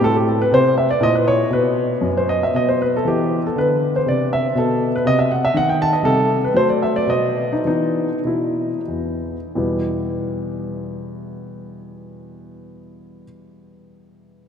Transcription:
0.01 A2 C4 A4
0.16 G4
0.29 A4
0.42 B4
0.51 C3 C5
0.78 E5
0.91 D5
1.01 A#2 E4 D#5
1.15 B4
1.28 C#5
1.50 B2 B3 B4
2.01 F#2
2.17 C5
2.29 D#5
2.43 E5
2.54 B2 B3 D#5
2.69 C5
2.82 B4
2.97 A4
3.05 E3 B3 G4
3.47 A4
3.56 D3 B4
3.96 C5
4.06 C3 D5
4.33 E5
4.55 B2 B3 A4
4.96 B4
5.05 C3 D#5
5.19 E5
5.32 F#5
5.45 E5
5.54 D#3 F#5
5.69 G5
5.82 A5
5.93 D#5
6.03 C3 G3 A4
6.44 B4
6.54 F#3 A3 C5
6.70 D5
6.83 E5
6.96 D5
7.07 B2 B3 D#5
7.53 D#4
7.65 E3 B3 D#4
8.24 B2 E4
8.88 E2
9.55 E2 B2 G3 B3 E4 G4

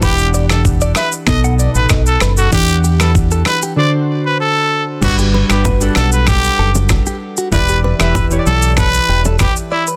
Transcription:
0.01 E1 E3 D4 G4 B4 F#5, kick, shaker
0.18 shaker
0.34 D5, shaker
0.49 A4, finger snap, cross-stick, shaker
0.65 kick, shaker
0.81 D5, shaker
0.95 B4 E5, finger snap, cross-stick, shaker
1.12 shaker
1.26 B1 B2 B3 D#4 A4 D#5, finger snap, kick, cross-stick, shaker
1.44 F#5, shaker
1.59 D5, shaker
1.75 A1 B4, shaker
1.89 B1 D#5, finger snap, kick, cross-stick, shaker
2.06 A4, shaker
2.20 F#1 B4, finger snap, cross-stick, shaker
2.37 F#4 A4, shaker
2.51 E2 E3 D4 G4 F#5, kick, shaker
2.68 shaker
2.84 G4, shaker
3.00 A4 B4, finger snap, cross-stick, shaker
3.15 kick, shaker
3.31 A4, shaker
3.45 B4, finger snap, cross-stick, shaker
3.62 G4, shaker
3.76 D3 D4 F#4 C5 D5
4.25 B4
4.40 A4
5.01 G1 G3 D4 F#4 B4, kick, crash, low conga, shaker
5.18 G4, shaker
5.34 B4, low bongo
5.49 G1 G3 D4 F#4 G4 B4, finger snap, cross-stick, shaker
5.65 B4, kick, high bongo, low conga, shaker
5.80 G3 D4 A4 F#5, high bongo, shaker
5.95 B1 A4, finger snap, cross-stick, low bongo, shaker
6.12 B4, shaker
6.27 G4, finger snap, kick, cross-stick, low conga, shaker
6.44 shaker
6.59 F#1 A4
6.75 low bongo, shaker
6.89 finger snap, kick, cross-stick, high bongo, shaker
7.06 G4, shaker
7.37 F#4, shaker
7.51 E1 E3 E4 G4 B4 D5, kick, low conga, shaker
7.68 G4, shaker
7.84 B4, low bongo
7.99 E1 E3 E4 G4 B4 E5, finger snap, cross-stick, shaker
8.15 B4, kick, high bongo, low conga, shaker
8.30 E3 E4 G4 C#5, high bongo, shaker
8.39 D5
8.46 B1 A4, low bongo, shaker
8.62 shaker
8.77 A4 B4, finger snap, kick, cross-stick, low conga, shaker
8.94 shaker
9.09 E1 G4
9.25 A4, low bongo, shaker
9.39 G4 B4, finger snap, kick, cross-stick, high bongo, shaker
9.56 shaker
9.72 E4 D5
9.87 B4, shaker

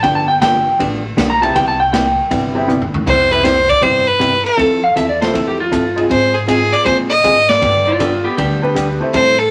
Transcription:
0.03 G1 D3 F3 B3 D4 G4 G5, kick, ride
0.15 A5
0.28 G5
0.41 D3 F3 G3 B3 D4 F4 G4 G5, kick, snare, hi-hat pedal, ride
0.79 A1 D3 F3 B3 D4 G4, kick, ride
1.17 B1 D3 F3 B3 D4 G4, kick, snare, hi-hat pedal, ride
1.30 A#5
1.42 G3 B3 C4 E4 G4 A5, ride
1.55 C2 C3 G3 B3 E4 G4 G5, kick, ride
1.68 A5
1.80 G5
1.92 C3 G3 B3 E4 G4 G5, kick, snare, hi-hat pedal, ride
2.31 G1 C3 G3 B3 E4 G4, kick, ride
2.55 G3 B3 C4 E4 G4
2.68 C3 G3 B3 E4 G4, hi-hat pedal
2.82 floor tom
2.94 floor tom
3.06 C2 C3 G3 B3 E4 G4 C5, kick, crash
3.31 G3 B3 C4 E4 G4 B4, ride
3.44 C3 G3 B3 E4 G4 C5, kick, snare, hi-hat pedal, ride
3.69 D5, kick, ride
3.81 G2 C3 G3 B3 E4 G4 C5, kick, ride
4.07 B4
4.19 C3 G3 B3 E4 G4, kick, hi-hat pedal, ride
4.45 A4, ride
4.57 F2 F3 C4 E4 A4, kick, ride
4.84 F5
4.96 E2 F3 C4 E4 A4 E5, kick, hi-hat pedal, ride
5.09 D5
5.21 A3 C4 E4 F4 A4 C5, snare, ride
5.33 F2 F3 C4 E4 A4, kick, ride
5.48 G4
5.60 F4
5.71 G2 F3 C4 E4 A4, kick, hi-hat pedal, ride
5.96 G#3 C4 D#4 F4 G#4, ride
6.10 G#2 G#3 C4 F4 G#4 C5, kick, ride
6.34 G#4
6.47 G#3 C4 D#4 F4 G#4, kick, hi-hat pedal, ride
6.73 D5, ride
6.85 A#2 G#3 C4 F4 G#4 C5, kick, ride
7.10 D#5
7.24 G#2 G#3 C4 F4 G#4, kick, hi-hat pedal, ride
7.49 D5, snare, ride
7.61 G2 D3 G3 B3 D4 G4, kick, ride
7.87 F4 D5
8.00 D3 G3 B3 D4 F4 G4 A4, kick, hi-hat pedal, ride
8.24 B3 G4
8.37 D2 D3 G3 B3 D4 G4, kick, ride
8.62 G3 B3 D4 G4 B4
8.75 D3 G3 B3 D4 G4, kick, hi-hat pedal, ride
9.00 A3 C4 E4 G4 C5
9.13 A2 E3 G3 C4 E4 A4 C5, kick, ride
9.39 A4

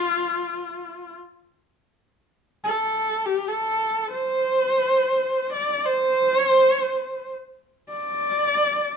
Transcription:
Already playing: F4
2.64 A4
3.26 G4
3.48 A4
4.11 C5
5.53 D5
5.86 C5
6.38 C#5
6.52 C5
6.67 C#5
6.81 C5
7.89 D5

